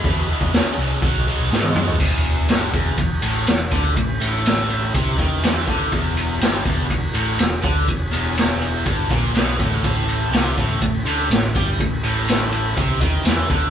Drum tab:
CC |----------------|x---------------|----------------|----------------|
RD |----------------|--x-x-x-x-x-x-x-|x-x-x-x-x-x-x-x-|x-x-x-x-x-x-x-x-|
HH |o---o---o-------|----------------|----------------|----------------|
SD |----o-------o---|----o-------o-o-|----o-------o-o-|----o-------o---|
T1 |-------------o--|----------------|----------------|----------------|
T2 |--------------o-|----------------|----------------|----------------|
FT |---------------o|----------------|----------------|----------------|
BD |o--o----o-------|o-----o-o-----o-|o-------o-o---o-|o-----o-o-----o-|

CC |----------------|----------------|----------------|
RD |x-x-x-x-x-x-x-x-|x-x-x-x-x-x-x-x-|x-x-x-x-x-x-x-x-|
HH |----------------|----------------|----------------|
SD |----o-------o-o-|----o-------o-o-|----o-------o-o-|
T1 |----------------|----------------|----------------|
T2 |----------------|----------------|----------------|
FT |----------------|----------------|----------------|
BD |o-------o-o---o-|o-----o-o-----o-|o-------o-o---o-|